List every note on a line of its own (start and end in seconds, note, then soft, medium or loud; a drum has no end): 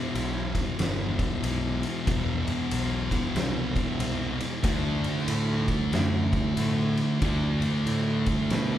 0.00 2.05 E2 medium
0.00 2.06 B2 medium
0.00 2.07 E3 medium
0.15 0.55 B1 medium
0.15 ride medium
0.55 kick medium
0.55 ride medium
0.78 1.19 G1 medium
0.78 snare medium
0.78 ride medium
1.19 kick medium
1.19 ride medium
1.42 1.82 B1 loud
1.42 ride medium
1.83 ride medium
2.07 2.47 E1 loud
2.07 4.63 E2 medium
2.07 4.63 B2 medium
2.07 4.64 E3 loud
2.07 kick loud
2.07 ride medium
2.47 ride medium
2.71 3.11 B1 medium
2.71 ride medium
3.11 kick medium
3.11 ride medium
3.35 3.75 C2 medium
3.35 snare loud
3.35 ride medium
3.76 kick medium
3.76 ride medium
3.99 4.40 C2 loud
3.99 ride loud
4.40 ride medium
4.63 5.04 D2 loud
4.63 7.20 D3 medium
4.63 7.21 A3 medium
4.63 7.22 D4 medium
4.63 kick loud
4.63 ride medium
5.04 ride medium
5.18 snare soft
5.28 5.68 A2 loud
5.28 ride loud
5.68 kick medium
5.68 ride medium
5.92 6.33 F#2 medium
5.92 snare loud
5.92 ride medium
6.33 kick medium
6.33 ride medium
6.57 6.97 A2 loud
6.57 ride medium
6.97 ride medium
7.21 7.62 D2 loud
7.21 8.78 D3 medium
7.21 8.78 A3 loud
7.21 8.78 D4 loud
7.21 kick loud
7.21 ride medium
7.62 ride medium
7.86 8.27 A2 loud
7.86 ride medium
8.26 kick medium
8.26 ride medium
8.50 8.78 B2 medium
8.50 snare loud
8.50 ride medium